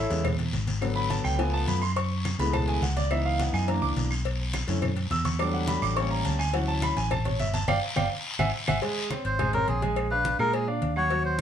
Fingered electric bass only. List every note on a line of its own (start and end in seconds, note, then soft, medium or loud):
0.10 0.50 E2 medium
0.53 1.19 G#1 medium
1.25 1.65 C#2 medium
1.68 2.34 F#2 medium
2.39 2.79 C#2 medium
2.82 3.48 C#2 medium
3.53 3.80 F#2 medium
3.82 3.95 C#2 medium
3.96 4.62 B1 medium
4.68 5.08 F#2 medium
5.11 5.77 E2 medium
5.82 6.22 A1 loud
6.25 6.91 D2 medium
6.96 7.36 A1 loud
7.40 7.66 G1 medium
7.68 7.79 G1 loud
7.96 8.07 G1 loud
8.39 8.50 G#1 loud
8.67 8.78 G#1 medium
9.25 9.65 G#1 medium
9.67 10.34 A#1 medium
10.39 10.79 A#2 loud
10.82 11.41 D#2 medium